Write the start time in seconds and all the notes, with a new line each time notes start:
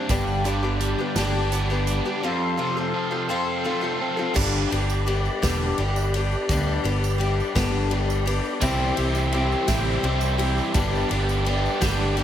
Already playing: G3 C4 D4
0.09 G1 G2 D3 G3 B3 D4 G4 D5 B5, kick, closed hi-hat, tambourine
0.27 tambourine
0.44 D3 G3 B3 D4 G4, closed hi-hat
0.63 G3 B3 D4 G4
0.80 G3, closed hi-hat
0.98 G3 B3 D4 G4
1.15 G1 G2 D3 G3 B3 D4 G4, snare, closed hi-hat, tambourine
1.52 G3 B3 D4 G4, closed hi-hat, tambourine
1.70 G3 B3 D4 G4, tambourine
1.86 D4, closed hi-hat, tambourine
2.05 G3 B3 D4 G4
2.23 F2 F3 C4 F4 A4 F5 C6
2.57 C3 F3 C4 F4 A4
2.77 C4 F4 A4
2.94 F3
3.11 C4 F4 A4
3.29 F3 C4 F4 A4
3.64 F3 A3 C4 F4 A4
3.81 C4 F4 A4
4.02 C4
4.17 C4 F4 A4
4.34 G1 G2 D3 G3 B3 D4 G4 D5 B5, kick, crash, tambourine
4.71 G1 G3 B3 D4 G4, ride
4.90 tambourine
5.06 G3 B3 D4 G4, ride, tambourine
5.25 tambourine
5.42 E1 G2 D3 G3 B3 D4 G4, kick, snare, ride, tambourine
5.78 G1 G3 B3 D4 G4, ride
5.96 tambourine
6.14 G3 B3 D4 G4, ride, tambourine
6.32 tambourine
6.49 D2 G2 D3 G3 B3 D4 G4, kick, ride, tambourine
6.84 G1 G3 B3 D4 G4, ride
7.04 tambourine
7.18 G3 B3 D4 G4, ride
7.23 tambourine
7.40 tambourine
7.55 G1 G2 D3 G3 B3 D4 G4, kick, snare, ride, tambourine
7.90 G3 B3 D4 G4, ride
8.10 tambourine
8.26 G3 B3 D4 G4, ride, tambourine
8.45 tambourine
8.61 C2 C3 E3 G3 C4 E4 G4 E5 C6, kick, ride, tambourine
8.97 C2 G3 C4 E4 G4, ride
9.15 tambourine
9.32 E3 G3 C4 E4 G4, ride, tambourine
9.52 tambourine
9.67 A1 C3 E3 G3 C4 E4 G4, kick, snare, ride, tambourine
10.03 C2 E3 G3 C4 E4 G4, ride
10.21 tambourine
10.38 C4 E4 G4, ride
10.58 tambourine
10.74 G1 G2 D3 G3 B3 D4 G4 D5 B5, kick, ride, tambourine
10.95 tambourine
11.09 G1 G3 B3 D4 G4, ride, tambourine
11.29 tambourine
11.45 G3 B3 D4 G4, ride
11.66 tambourine
11.81 G1 G2 D3 G3 B3 D4 G4, kick, snare, ride, tambourine
12.17 G3 B3 D4 G4, ride